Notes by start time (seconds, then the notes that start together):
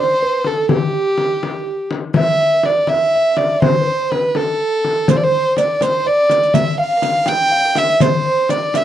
0.00 C5
0.23 B4
0.44 A4, frame drum
0.69 G4, frame drum
1.18 frame drum
1.43 frame drum
1.91 frame drum
2.14 E5, frame drum
2.42 E5
2.63 D5, frame drum
2.68 D5
2.87 E5, frame drum
3.15 E5
3.37 D5, frame drum
3.62 C5, frame drum
3.81 B4
3.88 C5
4.12 B4, frame drum
4.35 A4, frame drum
4.84 frame drum
5.08 C5, riq, frame drum
5.16 D5
5.23 C5
5.57 D5, riq, frame drum
5.81 C5, riq, frame drum
6.07 D5
6.30 riq, frame drum
6.43 riq
6.54 E5, riq, frame drum
6.78 F5
7.02 riq, frame drum
7.26 G5, riq, frame drum
7.52 F5
7.75 E5, riq, frame drum
7.89 riq
8.00 C5, riq, frame drum
8.49 D5, riq, frame drum
8.74 E5, riq, frame drum